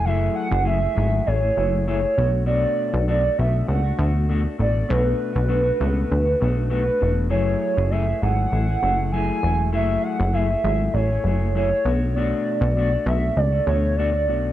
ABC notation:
X:1
M:4/4
L:1/16
Q:1/4=99
K:F#m
V:1 name="Soft synth lead"
e2 f2 e4 c4 c4 | d4 d2 e2 f4 z2 d2 | B12 B4 | c4 e2 f6 g4 |
e2 f2 e4 c4 c4 | d4 d2 e2 d2 c2 d4 |]
V:2 name="Clean electric guitar"
[F,A,EG]3 [A,EG] [F,A,EG] [A,EG] [F,A,EG]2 [F,A,EG] [A,EG] [F,A,EG]2 [F,A,EG] A, [B,,A,DF]2 | [B,,A,DF]3 [A,DF] [B,,A,DF] [DF] [B,,A,DF]2 [B,,A,DF] [A,DF] [B,,A,DF]2 [B,,A,DF] [A,DF] [B,,A,DF]2 | [B,,A,DF]3 [A,DF] [B,,A,DF] [A,DF] [B,,A,DF]3 [A,DF] [B,,A,DF]2 [B,,A,DF] [A,DF] [B,,A,DF]2 | [F,A,EG]3 [A,EG] [F,A,EG] [A,EG] [F,A,EG]2 [F,A,EG] [A,EG] [F,A,EG]2 [F,A,EG]2 [F,A,EG]2 |
[F,A,EG]3 [A,EG] [F,A,EG] [A,EG] [F,A,EG]2 [F,A,EG] [A,EG] [F,A,EG]2 [F,A,EG] A, [B,,A,DF]2 | [B,,A,DF]3 [A,DF] [B,,A,DF] [A,F] [B,,A,DF]3 [A,DF] [B,,A,DF]2 [B,,A,DF] [A,DF] [B,,A,DF]2 |]
V:3 name="Analog synth bass" clef=bass
F,,,2 z F,,,3 G,,,2 A,,,2 F,,,4 B,,,2- | B,,,2 z B,,,3 B,,,2 C,,2 D,,4 A,,,2 | B,,,2 z B,,,3 C,,2 D,,2 B,,,4 E,,,2 | F,,,2 z F,,,3 G,,,2 A,,,2 F,,,4 E,,,2 |
F,,,2 z F,,,3 G,,,2 A,,,2 F,,,4 B,,,2- | B,,,2 z B,,,3 B,,,2 C,,2 D,,4 B,,,2 |]